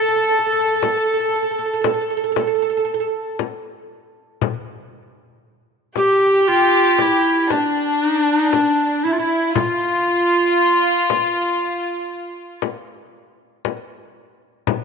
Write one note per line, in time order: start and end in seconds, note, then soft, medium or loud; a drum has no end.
0.00 3.36 A4 loud
0.00 3.36 A4 medium
0.00 0.07 A4 soft
0.09 0.15 A4 soft
0.16 0.22 A4 soft
0.23 0.30 A4 soft
0.31 0.37 A4 soft
0.39 0.45 A4 medium
0.46 0.52 A4 soft
0.53 0.59 A4 soft
0.60 0.66 A4 soft
0.67 0.74 A4 medium
0.75 0.82 A4 soft
0.83 0.90 A4 soft
0.83 frame drum medium
0.91 0.96 A4 soft
0.97 1.04 A4 medium
1.05 1.12 A4 soft
1.14 1.19 A4 soft
1.20 1.26 A4 soft
1.29 1.35 A4 soft
1.36 1.41 A4 soft
1.43 1.49 A4 soft
1.51 1.57 A4 soft
1.59 1.64 A4 medium
1.66 1.72 A4 soft
1.73 1.79 A4 medium
1.81 1.86 A4 soft
1.81 frame drum medium
1.87 1.93 A4 soft
1.94 2.00 A4 soft
2.01 2.08 A4 medium
2.10 2.16 A4 soft
2.17 2.23 A4 medium
2.24 2.30 A4 soft
2.32 2.38 A4 medium
2.36 2.46 A4 soft
2.36 frame drum medium
2.47 2.53 A4 medium
2.55 2.61 A4 soft
2.62 2.68 A4 medium
2.70 2.76 A4 medium
2.77 2.83 A4 medium
2.85 2.91 A4 soft
2.94 2.99 A4 medium
3.00 3.06 A4 soft
3.39 frame drum medium
4.42 frame drum medium
5.96 7.46 G4 medium
5.96 6.04 G4 medium
5.96 6.50 G4 medium
5.96 frame drum medium
6.05 6.11 G4 medium
6.12 6.17 G4 medium
6.19 6.25 G4 medium
6.26 6.33 G4 medium
6.34 6.40 G4 soft
6.41 6.48 G4 medium
6.48 7.51 F4 medium
6.48 7.02 F4 medium
6.98 7.53 E4 medium
6.98 frame drum medium
7.50 9.04 D4 medium
7.50 9.10 D4 medium
7.50 8.07 D4 medium
7.50 frame drum medium
8.07 8.21 D#4 medium
8.21 8.37 D4 medium
8.37 8.52 D#4 medium
8.52 9.05 D4 medium
8.52 frame drum medium
9.04 9.14 E4 medium
9.04 9.18 E4 medium
9.12 9.21 F4 medium
9.19 9.54 E4 medium
9.19 9.55 E4 medium
9.54 12.63 F4 medium
9.54 12.59 F4 medium
9.54 12.60 F4 medium
9.54 frame drum medium
11.10 frame drum medium
12.62 frame drum medium
13.65 frame drum medium
14.67 frame drum medium